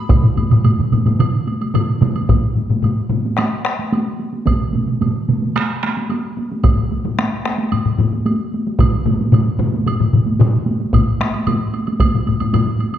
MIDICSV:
0, 0, Header, 1, 3, 480
1, 0, Start_track
1, 0, Tempo, 545951
1, 76, Time_signature, 4, 2, 24, 8
1, 5836, Tempo, 535714
1, 11522, End_track
2, 0, Start_track
2, 0, Title_t, "Taiko and cinematic ensemble drums"
2, 79, Note_on_c, 9, 47, 68
2, 83, Note_on_c, 9, 41, 103
2, 83, Note_on_c, 9, 48, 61
2, 87, Note_on_c, 9, 45, 69
2, 167, Note_off_c, 9, 47, 0
2, 171, Note_off_c, 9, 41, 0
2, 171, Note_off_c, 9, 48, 0
2, 174, Note_off_c, 9, 45, 0
2, 198, Note_on_c, 9, 47, 62
2, 209, Note_on_c, 9, 45, 72
2, 286, Note_off_c, 9, 47, 0
2, 297, Note_off_c, 9, 45, 0
2, 318, Note_on_c, 9, 47, 62
2, 326, Note_on_c, 9, 48, 48
2, 332, Note_on_c, 9, 45, 58
2, 406, Note_off_c, 9, 47, 0
2, 414, Note_off_c, 9, 48, 0
2, 420, Note_off_c, 9, 45, 0
2, 443, Note_on_c, 9, 47, 64
2, 448, Note_on_c, 9, 48, 41
2, 455, Note_on_c, 9, 45, 75
2, 531, Note_off_c, 9, 47, 0
2, 536, Note_off_c, 9, 48, 0
2, 543, Note_off_c, 9, 45, 0
2, 565, Note_on_c, 9, 47, 65
2, 566, Note_on_c, 9, 48, 56
2, 576, Note_on_c, 9, 45, 64
2, 653, Note_off_c, 9, 47, 0
2, 654, Note_off_c, 9, 48, 0
2, 664, Note_off_c, 9, 45, 0
2, 691, Note_on_c, 9, 47, 65
2, 702, Note_on_c, 9, 45, 64
2, 779, Note_off_c, 9, 47, 0
2, 790, Note_off_c, 9, 45, 0
2, 808, Note_on_c, 9, 47, 66
2, 815, Note_on_c, 9, 48, 47
2, 820, Note_on_c, 9, 45, 64
2, 896, Note_off_c, 9, 47, 0
2, 903, Note_off_c, 9, 48, 0
2, 908, Note_off_c, 9, 45, 0
2, 927, Note_on_c, 9, 47, 67
2, 929, Note_on_c, 9, 48, 49
2, 941, Note_on_c, 9, 45, 69
2, 1015, Note_off_c, 9, 47, 0
2, 1017, Note_off_c, 9, 48, 0
2, 1029, Note_off_c, 9, 45, 0
2, 1048, Note_on_c, 9, 47, 97
2, 1052, Note_on_c, 9, 48, 62
2, 1059, Note_on_c, 9, 45, 85
2, 1136, Note_off_c, 9, 47, 0
2, 1140, Note_off_c, 9, 48, 0
2, 1147, Note_off_c, 9, 45, 0
2, 1292, Note_on_c, 9, 48, 46
2, 1380, Note_off_c, 9, 48, 0
2, 1416, Note_on_c, 9, 48, 46
2, 1503, Note_off_c, 9, 48, 0
2, 1530, Note_on_c, 9, 47, 96
2, 1533, Note_on_c, 9, 45, 98
2, 1538, Note_on_c, 9, 48, 58
2, 1618, Note_off_c, 9, 47, 0
2, 1621, Note_off_c, 9, 45, 0
2, 1626, Note_off_c, 9, 48, 0
2, 1768, Note_on_c, 9, 47, 95
2, 1777, Note_on_c, 9, 45, 92
2, 1779, Note_on_c, 9, 48, 50
2, 1856, Note_off_c, 9, 47, 0
2, 1865, Note_off_c, 9, 45, 0
2, 1867, Note_off_c, 9, 48, 0
2, 1896, Note_on_c, 9, 48, 46
2, 1984, Note_off_c, 9, 48, 0
2, 2013, Note_on_c, 9, 41, 89
2, 2015, Note_on_c, 9, 45, 82
2, 2020, Note_on_c, 9, 48, 61
2, 2101, Note_off_c, 9, 41, 0
2, 2103, Note_off_c, 9, 45, 0
2, 2108, Note_off_c, 9, 48, 0
2, 2247, Note_on_c, 9, 45, 49
2, 2259, Note_on_c, 9, 48, 49
2, 2334, Note_off_c, 9, 45, 0
2, 2347, Note_off_c, 9, 48, 0
2, 2370, Note_on_c, 9, 45, 64
2, 2386, Note_on_c, 9, 48, 48
2, 2457, Note_off_c, 9, 45, 0
2, 2474, Note_off_c, 9, 48, 0
2, 2483, Note_on_c, 9, 45, 80
2, 2506, Note_on_c, 9, 48, 54
2, 2571, Note_off_c, 9, 45, 0
2, 2594, Note_off_c, 9, 48, 0
2, 2726, Note_on_c, 9, 45, 80
2, 2745, Note_on_c, 9, 48, 46
2, 2814, Note_off_c, 9, 45, 0
2, 2833, Note_off_c, 9, 48, 0
2, 2859, Note_on_c, 9, 48, 49
2, 2947, Note_off_c, 9, 48, 0
2, 2968, Note_on_c, 9, 37, 59
2, 2977, Note_on_c, 9, 48, 64
2, 3056, Note_off_c, 9, 37, 0
2, 3065, Note_off_c, 9, 48, 0
2, 3207, Note_on_c, 9, 37, 69
2, 3295, Note_off_c, 9, 37, 0
2, 3333, Note_on_c, 9, 48, 45
2, 3421, Note_off_c, 9, 48, 0
2, 3451, Note_on_c, 9, 48, 62
2, 3539, Note_off_c, 9, 48, 0
2, 3687, Note_on_c, 9, 48, 47
2, 3775, Note_off_c, 9, 48, 0
2, 3803, Note_on_c, 9, 48, 42
2, 3891, Note_off_c, 9, 48, 0
2, 3918, Note_on_c, 9, 48, 63
2, 3926, Note_on_c, 9, 47, 86
2, 3928, Note_on_c, 9, 41, 74
2, 4006, Note_off_c, 9, 48, 0
2, 4014, Note_off_c, 9, 47, 0
2, 4015, Note_off_c, 9, 41, 0
2, 4159, Note_on_c, 9, 48, 51
2, 4169, Note_on_c, 9, 47, 59
2, 4247, Note_off_c, 9, 48, 0
2, 4257, Note_off_c, 9, 47, 0
2, 4283, Note_on_c, 9, 48, 43
2, 4292, Note_on_c, 9, 47, 60
2, 4371, Note_off_c, 9, 48, 0
2, 4380, Note_off_c, 9, 47, 0
2, 4408, Note_on_c, 9, 48, 57
2, 4409, Note_on_c, 9, 47, 83
2, 4496, Note_off_c, 9, 48, 0
2, 4497, Note_off_c, 9, 47, 0
2, 4645, Note_on_c, 9, 48, 44
2, 4648, Note_on_c, 9, 47, 82
2, 4733, Note_off_c, 9, 48, 0
2, 4735, Note_off_c, 9, 47, 0
2, 4769, Note_on_c, 9, 48, 48
2, 4857, Note_off_c, 9, 48, 0
2, 4887, Note_on_c, 9, 48, 62
2, 4891, Note_on_c, 9, 37, 68
2, 4975, Note_off_c, 9, 48, 0
2, 4979, Note_off_c, 9, 37, 0
2, 5125, Note_on_c, 9, 37, 68
2, 5128, Note_on_c, 9, 48, 47
2, 5213, Note_off_c, 9, 37, 0
2, 5216, Note_off_c, 9, 48, 0
2, 5246, Note_on_c, 9, 48, 49
2, 5334, Note_off_c, 9, 48, 0
2, 5359, Note_on_c, 9, 48, 59
2, 5447, Note_off_c, 9, 48, 0
2, 5601, Note_on_c, 9, 48, 50
2, 5688, Note_off_c, 9, 48, 0
2, 5728, Note_on_c, 9, 48, 48
2, 5816, Note_off_c, 9, 48, 0
2, 5837, Note_on_c, 9, 41, 99
2, 5838, Note_on_c, 9, 45, 67
2, 5844, Note_on_c, 9, 48, 62
2, 5927, Note_off_c, 9, 41, 0
2, 5928, Note_off_c, 9, 45, 0
2, 5934, Note_off_c, 9, 48, 0
2, 5955, Note_on_c, 9, 45, 62
2, 6045, Note_off_c, 9, 45, 0
2, 6081, Note_on_c, 9, 45, 52
2, 6087, Note_on_c, 9, 48, 53
2, 6170, Note_off_c, 9, 45, 0
2, 6176, Note_off_c, 9, 48, 0
2, 6202, Note_on_c, 9, 45, 71
2, 6207, Note_on_c, 9, 48, 51
2, 6291, Note_off_c, 9, 45, 0
2, 6297, Note_off_c, 9, 48, 0
2, 6327, Note_on_c, 9, 37, 66
2, 6327, Note_on_c, 9, 48, 63
2, 6416, Note_off_c, 9, 48, 0
2, 6417, Note_off_c, 9, 37, 0
2, 6568, Note_on_c, 9, 37, 65
2, 6569, Note_on_c, 9, 48, 46
2, 6657, Note_off_c, 9, 37, 0
2, 6659, Note_off_c, 9, 48, 0
2, 6685, Note_on_c, 9, 48, 59
2, 6775, Note_off_c, 9, 48, 0
2, 6804, Note_on_c, 9, 48, 60
2, 6812, Note_on_c, 9, 45, 61
2, 6894, Note_off_c, 9, 48, 0
2, 6901, Note_off_c, 9, 45, 0
2, 6926, Note_on_c, 9, 45, 69
2, 7015, Note_off_c, 9, 45, 0
2, 7043, Note_on_c, 9, 45, 92
2, 7049, Note_on_c, 9, 48, 52
2, 7132, Note_off_c, 9, 45, 0
2, 7138, Note_off_c, 9, 48, 0
2, 7167, Note_on_c, 9, 48, 49
2, 7257, Note_off_c, 9, 48, 0
2, 7285, Note_on_c, 9, 48, 65
2, 7375, Note_off_c, 9, 48, 0
2, 7539, Note_on_c, 9, 48, 52
2, 7629, Note_off_c, 9, 48, 0
2, 7655, Note_on_c, 9, 48, 53
2, 7744, Note_off_c, 9, 48, 0
2, 7762, Note_on_c, 9, 41, 93
2, 7765, Note_on_c, 9, 47, 101
2, 7766, Note_on_c, 9, 45, 95
2, 7773, Note_on_c, 9, 48, 67
2, 7852, Note_off_c, 9, 41, 0
2, 7855, Note_off_c, 9, 47, 0
2, 7856, Note_off_c, 9, 45, 0
2, 7862, Note_off_c, 9, 48, 0
2, 8001, Note_on_c, 9, 45, 81
2, 8005, Note_on_c, 9, 47, 90
2, 8017, Note_on_c, 9, 48, 58
2, 8090, Note_off_c, 9, 45, 0
2, 8095, Note_off_c, 9, 47, 0
2, 8107, Note_off_c, 9, 48, 0
2, 8139, Note_on_c, 9, 48, 54
2, 8229, Note_off_c, 9, 48, 0
2, 8240, Note_on_c, 9, 45, 96
2, 8241, Note_on_c, 9, 47, 95
2, 8252, Note_on_c, 9, 48, 63
2, 8330, Note_off_c, 9, 45, 0
2, 8330, Note_off_c, 9, 47, 0
2, 8341, Note_off_c, 9, 48, 0
2, 8483, Note_on_c, 9, 45, 100
2, 8483, Note_on_c, 9, 47, 92
2, 8493, Note_on_c, 9, 48, 49
2, 8572, Note_off_c, 9, 47, 0
2, 8573, Note_off_c, 9, 45, 0
2, 8583, Note_off_c, 9, 48, 0
2, 8612, Note_on_c, 9, 48, 57
2, 8701, Note_off_c, 9, 48, 0
2, 8725, Note_on_c, 9, 47, 69
2, 8729, Note_on_c, 9, 48, 71
2, 8735, Note_on_c, 9, 45, 64
2, 8815, Note_off_c, 9, 47, 0
2, 8818, Note_off_c, 9, 48, 0
2, 8825, Note_off_c, 9, 45, 0
2, 8849, Note_on_c, 9, 47, 57
2, 8851, Note_on_c, 9, 45, 70
2, 8938, Note_off_c, 9, 47, 0
2, 8941, Note_off_c, 9, 45, 0
2, 8968, Note_on_c, 9, 45, 74
2, 8975, Note_on_c, 9, 47, 65
2, 9058, Note_off_c, 9, 45, 0
2, 9065, Note_off_c, 9, 47, 0
2, 9084, Note_on_c, 9, 48, 59
2, 9173, Note_off_c, 9, 48, 0
2, 9203, Note_on_c, 9, 48, 72
2, 9207, Note_on_c, 9, 45, 108
2, 9216, Note_on_c, 9, 47, 108
2, 9293, Note_off_c, 9, 48, 0
2, 9297, Note_off_c, 9, 45, 0
2, 9305, Note_off_c, 9, 47, 0
2, 9440, Note_on_c, 9, 48, 63
2, 9530, Note_off_c, 9, 48, 0
2, 9565, Note_on_c, 9, 48, 56
2, 9654, Note_off_c, 9, 48, 0
2, 9681, Note_on_c, 9, 41, 93
2, 9686, Note_on_c, 9, 48, 55
2, 9693, Note_on_c, 9, 45, 93
2, 9771, Note_off_c, 9, 41, 0
2, 9775, Note_off_c, 9, 48, 0
2, 9782, Note_off_c, 9, 45, 0
2, 9929, Note_on_c, 9, 48, 52
2, 9934, Note_on_c, 9, 37, 62
2, 10018, Note_off_c, 9, 48, 0
2, 10024, Note_off_c, 9, 37, 0
2, 10050, Note_on_c, 9, 48, 48
2, 10140, Note_off_c, 9, 48, 0
2, 10167, Note_on_c, 9, 48, 57
2, 10169, Note_on_c, 9, 45, 90
2, 10257, Note_off_c, 9, 48, 0
2, 10258, Note_off_c, 9, 45, 0
2, 10403, Note_on_c, 9, 48, 46
2, 10493, Note_off_c, 9, 48, 0
2, 10531, Note_on_c, 9, 48, 53
2, 10621, Note_off_c, 9, 48, 0
2, 10638, Note_on_c, 9, 41, 87
2, 10644, Note_on_c, 9, 48, 61
2, 10651, Note_on_c, 9, 45, 61
2, 10727, Note_off_c, 9, 41, 0
2, 10734, Note_off_c, 9, 48, 0
2, 10740, Note_off_c, 9, 45, 0
2, 10771, Note_on_c, 9, 45, 70
2, 10861, Note_off_c, 9, 45, 0
2, 10878, Note_on_c, 9, 48, 50
2, 10894, Note_on_c, 9, 45, 64
2, 10967, Note_off_c, 9, 48, 0
2, 10984, Note_off_c, 9, 45, 0
2, 11004, Note_on_c, 9, 48, 43
2, 11012, Note_on_c, 9, 45, 69
2, 11094, Note_off_c, 9, 48, 0
2, 11101, Note_off_c, 9, 45, 0
2, 11116, Note_on_c, 9, 48, 54
2, 11123, Note_on_c, 9, 45, 108
2, 11206, Note_off_c, 9, 48, 0
2, 11213, Note_off_c, 9, 45, 0
2, 11352, Note_on_c, 9, 48, 44
2, 11442, Note_off_c, 9, 48, 0
2, 11471, Note_on_c, 9, 48, 43
2, 11522, Note_off_c, 9, 48, 0
2, 11522, End_track
3, 0, Start_track
3, 0, Title_t, "Drums"
3, 86, Note_on_c, 9, 76, 46
3, 174, Note_off_c, 9, 76, 0
3, 329, Note_on_c, 9, 76, 36
3, 417, Note_off_c, 9, 76, 0
3, 450, Note_on_c, 9, 76, 34
3, 538, Note_off_c, 9, 76, 0
3, 567, Note_on_c, 9, 76, 43
3, 655, Note_off_c, 9, 76, 0
3, 812, Note_on_c, 9, 76, 35
3, 900, Note_off_c, 9, 76, 0
3, 935, Note_on_c, 9, 76, 34
3, 1023, Note_off_c, 9, 76, 0
3, 1056, Note_on_c, 9, 76, 50
3, 1144, Note_off_c, 9, 76, 0
3, 1296, Note_on_c, 9, 76, 33
3, 1384, Note_off_c, 9, 76, 0
3, 1420, Note_on_c, 9, 76, 39
3, 1508, Note_off_c, 9, 76, 0
3, 1538, Note_on_c, 9, 76, 53
3, 1626, Note_off_c, 9, 76, 0
3, 1777, Note_on_c, 9, 76, 38
3, 1865, Note_off_c, 9, 76, 0
3, 1896, Note_on_c, 9, 76, 41
3, 1984, Note_off_c, 9, 76, 0
3, 2017, Note_on_c, 9, 76, 39
3, 2105, Note_off_c, 9, 76, 0
3, 2496, Note_on_c, 9, 76, 34
3, 2584, Note_off_c, 9, 76, 0
3, 2975, Note_on_c, 9, 76, 48
3, 3063, Note_off_c, 9, 76, 0
3, 3457, Note_on_c, 9, 76, 35
3, 3545, Note_off_c, 9, 76, 0
3, 3930, Note_on_c, 9, 76, 49
3, 4018, Note_off_c, 9, 76, 0
3, 4411, Note_on_c, 9, 76, 37
3, 4499, Note_off_c, 9, 76, 0
3, 4886, Note_on_c, 9, 76, 53
3, 4974, Note_off_c, 9, 76, 0
3, 5362, Note_on_c, 9, 76, 35
3, 5450, Note_off_c, 9, 76, 0
3, 5835, Note_on_c, 9, 76, 46
3, 5924, Note_off_c, 9, 76, 0
3, 6326, Note_on_c, 9, 76, 34
3, 6416, Note_off_c, 9, 76, 0
3, 6805, Note_on_c, 9, 76, 50
3, 6894, Note_off_c, 9, 76, 0
3, 7290, Note_on_c, 9, 76, 39
3, 7380, Note_off_c, 9, 76, 0
3, 7776, Note_on_c, 9, 76, 54
3, 7865, Note_off_c, 9, 76, 0
3, 8256, Note_on_c, 9, 76, 39
3, 8346, Note_off_c, 9, 76, 0
3, 8736, Note_on_c, 9, 76, 58
3, 8826, Note_off_c, 9, 76, 0
3, 9216, Note_on_c, 9, 76, 37
3, 9306, Note_off_c, 9, 76, 0
3, 9691, Note_on_c, 9, 76, 53
3, 9781, Note_off_c, 9, 76, 0
3, 9930, Note_on_c, 9, 76, 47
3, 10020, Note_off_c, 9, 76, 0
3, 10046, Note_on_c, 9, 76, 38
3, 10135, Note_off_c, 9, 76, 0
3, 10164, Note_on_c, 9, 76, 58
3, 10254, Note_off_c, 9, 76, 0
3, 10405, Note_on_c, 9, 76, 44
3, 10495, Note_off_c, 9, 76, 0
3, 10524, Note_on_c, 9, 76, 38
3, 10613, Note_off_c, 9, 76, 0
3, 10643, Note_on_c, 9, 76, 60
3, 10732, Note_off_c, 9, 76, 0
3, 10883, Note_on_c, 9, 76, 39
3, 10972, Note_off_c, 9, 76, 0
3, 11001, Note_on_c, 9, 76, 49
3, 11091, Note_off_c, 9, 76, 0
3, 11123, Note_on_c, 9, 76, 56
3, 11212, Note_off_c, 9, 76, 0
3, 11360, Note_on_c, 9, 76, 42
3, 11450, Note_off_c, 9, 76, 0
3, 11481, Note_on_c, 9, 76, 46
3, 11522, Note_off_c, 9, 76, 0
3, 11522, End_track
0, 0, End_of_file